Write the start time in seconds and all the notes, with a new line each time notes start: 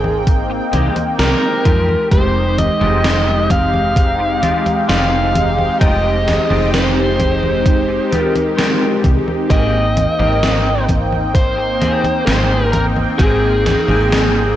Already playing: G#1 A#3 C4 D#4 G#4 G5
0.04 high conga
0.27 kick, closed hi-hat, high conga
0.50 muted clean electric guitar stroke
0.73 C2 G#3 A#3 C4 G4, closed hi-hat, high conga
0.96 muted fretless electric bass stroke, closed hi-hat, high conga
1.18 C2 G#3 A#3 C4 G4 A#4, snare, closed hi-hat, high conga
1.65 F2 G#3 D#4 F4 G4, kick, closed hi-hat, high conga
1.89 high conga
2.11 F1 G#3 C4 D#4 G4 C5, kick, closed hi-hat, high conga
2.58 D#5, closed hi-hat, high conga
2.80 F1 G#3 C4 D#4 F4 G4, high conga
3.04 snare, closed hi-hat, high conga
3.50 F5, kick, closed hi-hat, high conga
3.74 high conga
3.96 kick, closed hi-hat, high conga
4.19 muted clean electric guitar stroke
4.42 G#3 D#4 F4 G4, closed hi-hat, high conga
4.66 muted fretless electric bass stroke, closed hi-hat, high conga
4.88 F1 G#3 D#4 F4 G4 F5, snare, closed hi-hat, high conga
5.35 closed hi-hat, high conga
5.58 high conga
5.80 F1 G#3 C4 D#4 F4 G4 D#5, kick, closed hi-hat, high conga
6.28 snare, closed hi-hat, high conga
6.49 F1 G#3 C4 D#4 F4 G4, high conga
6.74 C5, snare, closed hi-hat, high conga
7.20 kick, closed hi-hat, high conga
7.43 high conga
7.66 kick, closed hi-hat, high conga
7.88 muted clean electric guitar stroke
8.11 G#3 D#4 F4 G4, closed hi-hat, high conga
8.20 A#4
8.36 closed hi-hat, high conga
8.57 G#3 D#4 F4 G4, snare, closed hi-hat, high conga
9.04 C2, kick, closed hi-hat, high conga
9.28 high conga
9.49 G#1 A#3 C4 D#4 G4 G#4 D#5 G5, kick, closed hi-hat, high conga
9.97 closed hi-hat, high conga
10.18 G#1 A#3 C4 D#4 G4 A#4 G5, high conga
10.43 snare, closed hi-hat, high conga
10.89 kick, closed hi-hat, high conga
11.12 high conga
11.35 C5, kick, closed hi-hat, high conga
11.57 muted clean electric guitar stroke
11.80 A#3 C4 G4 G#4, closed hi-hat, high conga
12.03 muted fretless electric bass stroke, closed hi-hat, high conga
12.26 G#1 A#3 C4 G4 G#4 C5, snare, closed hi-hat, high conga
12.72 A#4, closed hi-hat, high conga
12.96 high conga
13.18 G#1 A#3 C4 D#4 G4 G#4 G5, kick, closed hi-hat, high conga
13.66 snare, closed hi-hat, high conga
13.87 G#1 A#3 C4 D#4 G4 G#4 G5, high conga
14.12 snare, closed hi-hat, high conga